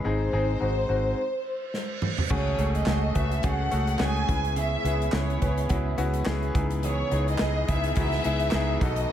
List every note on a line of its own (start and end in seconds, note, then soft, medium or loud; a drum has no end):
0.00 1.13 G#3 medium
0.04 0.28 G#1 medium
0.04 0.85 G#2 soft
0.04 1.17 C3 medium
0.04 1.17 D#3 medium
0.04 0.30 G#3 medium
0.04 0.30 C4 medium
0.04 0.30 D#4 medium
0.04 1.17 D#4 medium
0.04 0.31 G#4 medium
0.04 1.99 C5 medium
0.33 0.56 G#1 medium
0.33 0.59 G#3 medium
0.33 0.59 C4 medium
0.33 0.59 D#4 medium
0.33 0.59 G#4 medium
0.60 0.84 G#1 medium
0.60 0.87 G#3 medium
0.60 0.87 C4 soft
0.60 0.87 D#4 soft
0.60 0.87 F#4 medium
0.89 1.12 G#1 medium
0.89 1.15 G#3 medium
0.89 1.15 C4 medium
0.89 1.15 D#4 medium
0.89 1.15 F#4 medium
1.17 reverse cymbal medium
1.74 snare soft
2.02 mid tom medium
2.18 floor tom medium
2.30 2.54 C#2 loud
2.30 6.51 C#3 medium
2.30 3.11 C#3 medium
2.30 2.59 C#3 medium
2.30 8.77 G#3 medium
2.30 4.26 A3 medium
2.30 2.56 A3 medium
2.30 2.59 A3 medium
2.30 2.56 C#4 medium
2.30 2.60 C#4 medium
2.30 4.27 F#4 medium
2.30 2.57 F#4 medium
2.30 2.59 F#4 medium
2.30 2.57 G#4 medium
2.30 2.58 G#4 medium
2.30 2.73 C#5 medium
2.30 kick medium
2.30 crash medium
2.30 impact medium
2.58 2.82 C#2 medium
2.58 2.84 A3 medium
2.58 2.85 C#4 medium
2.58 2.86 C#4 soft
2.58 2.85 F#4 medium
2.58 2.87 F#4 soft
2.58 2.87 G#4 medium
2.58 2.85 A4 medium
2.58 closed hi-hat medium
2.75 3.14 D#5 medium
2.75 closed hi-hat soft
2.86 3.10 C#2 medium
2.86 3.15 A3 medium
2.86 3.13 A3 medium
2.86 3.13 C#4 medium
2.86 3.15 C#4 medium
2.86 3.13 F#4 medium
2.86 3.15 F#4 medium
2.86 3.13 G#4 medium
2.86 snare medium
2.86 clap medium
3.14 3.39 C#2 medium
3.14 3.41 A3 medium
3.14 3.41 C#4 medium
3.14 3.43 C#4 soft
3.14 3.41 F#4 medium
3.14 3.43 F#4 soft
3.14 3.43 G#4 medium
3.14 3.41 B4 medium
3.14 3.45 E5 medium
3.14 kick medium
3.14 closed hi-hat medium
3.32 closed hi-hat soft
3.43 3.67 C#2 medium
3.43 3.72 C#3 medium
3.43 3.72 A3 medium
3.43 3.70 A3 medium
3.43 3.72 C#4 medium
3.43 3.70 C#4 medium
3.43 3.70 F#4 medium
3.43 3.71 F#4 loud
3.43 3.70 G#4 medium
3.43 4.02 F#5 medium
3.43 kick medium
3.43 closed hi-hat medium
3.71 3.96 C#2 medium
3.71 3.98 A3 medium
3.71 3.98 C#4 medium
3.71 3.99 C#4 soft
3.71 3.98 F#4 medium
3.71 4.00 F#4 soft
3.71 4.00 G#4 medium
3.71 3.98 A4 medium
3.71 closed hi-hat medium
3.87 closed hi-hat soft
3.99 4.23 C#2 medium
3.99 4.26 A3 medium
3.99 4.29 A3 medium
3.99 4.26 C#4 medium
3.99 4.29 C#4 medium
3.99 4.26 F#4 medium
3.99 4.28 F#4 medium
3.99 4.26 G#4 medium
3.99 4.58 G#5 medium
3.99 snare loud
3.99 clap medium
4.16 closed hi-hat soft
4.27 4.75 C#2 medium
4.27 5.10 C#3 medium
4.27 4.80 B3 medium
4.27 4.55 B3 soft
4.27 9.12 B3 medium
4.27 4.81 C#4 medium
4.27 4.55 E4 soft
4.27 4.81 E4 medium
4.27 6.53 E4 medium
4.27 4.56 G#4 soft
4.27 4.81 G#4 medium
4.27 kick medium
4.27 closed hi-hat medium
4.45 closed hi-hat soft
4.56 4.85 C#3 medium
4.56 4.85 G#3 medium
4.56 4.85 B3 medium
4.56 4.84 E4 medium
4.56 4.83 G#4 medium
4.56 closed hi-hat medium
4.60 5.11 E5 medium
4.84 5.08 C#2 medium
4.84 5.11 B3 medium
4.84 5.13 B3 soft
4.84 5.11 C#4 medium
4.84 5.11 E4 medium
4.84 5.13 E4 soft
4.84 5.13 G#4 medium
4.84 5.11 G#4 medium
4.84 closed hi-hat medium
5.02 closed hi-hat soft
5.12 5.36 C#2 medium
5.12 5.42 G#3 medium
5.12 5.39 B3 medium
5.12 5.42 B3 medium
5.12 5.39 C#4 medium
5.12 5.39 E4 medium
5.12 5.42 E4 medium
5.12 5.41 G#4 medium
5.12 5.39 B4 medium
5.12 5.71 C#5 medium
5.12 snare loud
5.12 clap medium
5.30 closed hi-hat soft
5.41 5.65 C#2 medium
5.41 5.68 B3 medium
5.41 5.69 B3 soft
5.41 5.68 C#4 medium
5.41 5.68 E4 medium
5.41 5.70 E4 soft
5.41 5.70 G#4 medium
5.41 5.68 B4 medium
5.41 kick medium
5.41 closed hi-hat medium
5.58 closed hi-hat medium
5.69 5.93 C#2 medium
5.69 5.98 C#3 loud
5.69 5.98 G#3 medium
5.69 5.96 B3 medium
5.69 5.99 B3 medium
5.69 5.96 C#4 medium
5.69 5.96 E4 medium
5.69 5.98 E4 loud
5.69 5.96 F#4 medium
5.69 5.97 G#4 loud
5.69 kick medium
5.69 closed hi-hat medium
5.98 6.21 C#2 medium
5.98 6.24 B3 loud
5.98 6.26 B3 soft
5.98 6.24 C#4 medium
5.98 6.24 E4 medium
5.98 6.27 E4 medium
5.98 6.24 F#4 loud
5.98 6.27 G#4 medium
5.98 closed hi-hat medium
6.14 closed hi-hat soft
6.25 6.50 C#2 medium
6.25 6.55 G#3 medium
6.25 6.52 B3 loud
6.25 6.55 B3 medium
6.25 6.52 C#4 medium
6.25 6.52 E4 loud
6.25 6.55 E4 medium
6.25 6.52 G#4 loud
6.25 snare loud
6.25 clap medium
6.29 6.53 G#4 medium
6.43 closed hi-hat soft
6.54 7.02 C#2 medium
6.54 7.36 C#3 medium
6.54 9.12 E3 medium
6.54 6.83 G#3 soft
6.54 7.06 B3 medium
6.54 6.83 B3 soft
6.54 7.07 D#4 medium
6.54 6.83 D#4 medium
6.54 7.06 E4 medium
6.54 6.83 G#4 soft
6.54 7.07 G#4 medium
6.54 8.80 G#4 medium
6.54 kick loud
6.54 closed hi-hat medium
6.70 closed hi-hat medium
6.83 7.12 C#3 medium
6.83 7.12 E3 medium
6.83 7.12 G#3 medium
6.83 7.12 B3 medium
6.83 7.11 D#4 medium
6.83 7.11 G#4 medium
6.83 7.26 C#5 medium
6.83 closed hi-hat medium
6.83 noise sweep medium
7.11 7.35 C#2 medium
7.11 7.39 G#3 soft
7.11 7.37 B3 medium
7.11 7.39 B3 medium
7.11 7.38 D#4 medium
7.11 7.40 D#4 soft
7.11 7.38 E4 medium
7.11 7.40 G#4 medium
7.11 7.38 G#4 medium
7.11 closed hi-hat medium
7.28 7.69 D#5 medium
7.28 closed hi-hat soft
7.38 7.64 C#2 medium
7.38 7.68 G#3 medium
7.38 7.66 B3 medium
7.38 7.68 B3 medium
7.38 7.66 D#4 medium
7.38 7.67 D#4 medium
7.38 7.66 E4 medium
7.38 7.66 G#4 medium
7.38 snare medium
7.38 clap medium
7.68 7.92 C#2 medium
7.68 7.96 G#3 soft
7.68 7.95 B3 medium
7.68 7.96 B3 soft
7.68 7.97 D#4 soft
7.68 7.95 D#4 medium
7.68 7.95 E4 medium
7.68 7.96 G#4 medium
7.68 7.95 G#4 medium
7.68 7.97 E5 loud
7.68 kick medium
7.68 closed hi-hat medium
7.84 closed hi-hat soft
7.96 8.20 C#2 medium
7.96 8.25 C#3 medium
7.96 8.25 E3 medium
7.96 8.25 G#3 loud
7.96 8.22 B3 medium
7.96 8.25 B3 loud
7.96 8.23 D#4 medium
7.96 8.25 D#4 loud
7.96 8.23 E4 medium
7.96 8.23 F#4 medium
7.96 8.24 G#4 loud
7.96 8.78 E5 loud
7.96 kick medium
7.96 closed hi-hat medium
8.12 snare soft
8.12 closed hi-hat soft
8.24 8.48 C#2 medium
8.24 8.52 G#3 soft
8.24 8.51 B3 medium
8.24 8.53 B3 soft
8.24 8.51 D#4 medium
8.24 8.53 D#4 medium
8.24 8.51 E4 medium
8.24 8.53 G#4 medium
8.24 8.51 G#4 medium
8.24 closed hi-hat medium
8.40 closed hi-hat soft
8.51 8.77 C#2 medium
8.51 8.81 G#3 medium
8.51 8.79 B3 medium
8.51 8.82 B3 medium
8.51 8.79 D#4 medium
8.51 8.81 D#4 medium
8.51 8.79 E4 medium
8.51 8.80 G#4 loud
8.51 8.81 G#4 medium
8.51 snare loud
8.51 clap medium
8.81 9.05 B1 medium
8.81 9.12 B2 medium
8.81 9.10 F#3 soft
8.81 9.12 A3 medium
8.81 9.12 B3 medium
8.81 9.10 B3 medium
8.81 9.12 D#4 medium
8.81 9.10 D#4 medium
8.81 9.12 F#4 medium
8.81 9.10 A4 medium
8.81 9.12 A4 medium
8.81 9.12 D#5 loud
8.81 kick loud
8.81 closed hi-hat medium
8.96 closed hi-hat medium